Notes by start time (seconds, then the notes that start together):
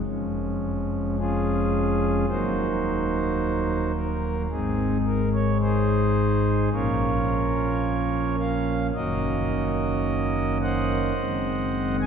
0.06 F1 F2 F3 G#3 C#4
1.18 C#4 F4 G#4
2.29 D#1 D#2 F#3 A#3 D#4 F#4 C5
3.95 A#4
4.50 G#1 G#2 G#3 C4 D#4 G#4
5.06 A#4
5.34 C#5
5.61 D#4 G#4 C5
6.72 A#1 A#2 F3 A#3 C#4 F4 A#4 C#5
8.39 F5
8.95 F#1 F#2 D#3 A#3 C#4 F#4 A#4 D#5
10.62 C5 D#5 F#5
11.18 F#1 F#2 D#3 G#3 C4
12.01 G#5